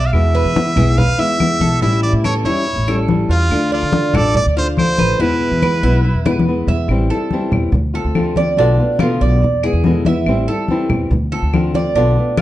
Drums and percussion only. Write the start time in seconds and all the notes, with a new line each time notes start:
0.13 high conga, claves
0.35 high conga
0.56 high conga
0.77 high conga, low conga, claves
0.98 high conga, low conga
1.19 high conga
1.40 high conga, claves
1.61 high conga
1.82 high conga
2.04 high conga
2.24 high conga, claves
2.45 high conga
2.66 high conga
2.87 high conga, claves
3.08 high conga
3.51 high conga, claves
3.72 high conga
3.92 high conga
4.14 high conga, low conga, claves
4.35 high conga, low conga
4.56 high conga
4.78 high conga, claves
4.98 high conga
5.20 high conga
5.41 high conga
5.62 high conga, claves
5.84 high conga
6.05 high conga
6.26 high conga, claves
6.39 high conga
6.68 low conga
6.88 high conga, claves
7.10 high conga
7.31 high conga
7.52 high conga, low conga, claves
7.72 high conga, low conga
7.94 high conga
8.15 high conga, claves
8.36 high conga
8.57 high conga
8.78 high conga
8.99 high conga, claves
9.20 high conga
9.41 high conga
9.63 high conga, claves
9.84 high conga
10.05 high conga
10.26 high conga, claves
10.47 high conga
10.68 high conga
10.90 high conga, low conga, claves
11.11 high conga, low conga
11.32 high conga
11.54 high conga, claves
11.74 high conga
11.96 high conga
12.17 high conga
12.37 high conga, claves